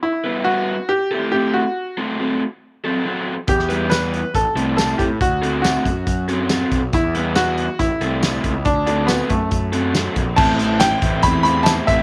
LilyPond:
<<
  \new Staff \with { instrumentName = "Upright piano" } { \time 4/4 \key a \dorian \tempo 4 = 139 e'4 fis'4 g'4 g'8 fis'8~ | fis'8 r2. r8 | g'4 b'4 a'4 a'8 g'8 | fis'4 fis'4. r4. |
e'4 fis'4 e'2 | d'8 d'8 b8 a2 r8 | a''4 g''4 b''8 b''8 a''8 e''8 | }
  \new Staff \with { instrumentName = "Analog synth pad" } { \time 4/4 \key a \dorian r1 | r1 | r1 | r1 |
r1 | r1 | <a e' g' c''>1 | }
  \new Staff \with { instrumentName = "Overdriven electric guitar" } { \time 4/4 \key a \dorian r8 <g b e' b'>8 <g b e' b'>8 r4 <a c' e' a'>8 <a c' e' a'>8 r8 | r8 <a c' fis' a'>8 <a c' fis' a'>8 r4 <fis c' fis' a'>8 <fis c' fis' a'>8 r8 | r8 <g b e' b'>8 <g b e' b'>8 r4 <a c' e' a'>8 <a c' e' a'>8 r8 | r8 <a c' fis' a'>8 <a c' fis' a'>8 r4 <fis c' fis' a'>8 <fis c' fis' a'>8 r8 |
r8 <g b e' b'>8 <g b e' b'>8 r4 <a c' e' a'>8 <a c' e' a'>8 r8 | r8 <a c' fis' a'>8 <a c' fis' a'>8 r4 <fis c' fis' a'>8 <fis c' fis' a'>8 r8 | <a, e a c' e'>8 <a, e a c' e'>8 <a, e a c' e'>8 <a, e a c' e'>8 <a, e a c' e'>8 <a, e a c' e'>8 <a, e a c' e'>8 <a, e a c' e'>8 | }
  \new Staff \with { instrumentName = "Picked electric bass" } { \clef bass \time 4/4 \key a \dorian r1 | r1 | e,2 a,,16 r16 c,4 a,8 | d,4. fis,8 fis,4. b,,8 |
e,2 a,,16 r16 c,4 cis,8 | d,4. fis,8 fis,4. ais,,8 | a,,4. a,,8 e,4. a,,8 | }
  \new DrumStaff \with { instrumentName = "Drums" } \drummode { \time 4/4 r4 r4 r4 r4 | r4 r4 r4 r4 | <hh bd>16 sn16 hh8 <hh sn tamb>8 hh8 <hh bd>8 hh8 <hh sn tamb>8 <hh bd>8 | <hh bd>8 hh8 <hh sn tamb>8 <hh bd>8 <hh bd>8 hh8 <hh sn tamb>8 <hh bd>8 |
<hh bd>8 hh8 <hh sn tamb>8 hh8 <hh bd>8 hh8 <hh sn tamb>8 <hh bd>8 | <hh bd>8 hh8 <hh sn tamb>8 <hh bd>8 <hh bd>8 hh8 <hh sn tamb>8 <hh bd>8 | <cymc bd>8 hh8 <hh sn tamb>8 <hh bd>8 <hh bd>8 hh8 <hh sn tamb>8 <hh bd>8 | }
>>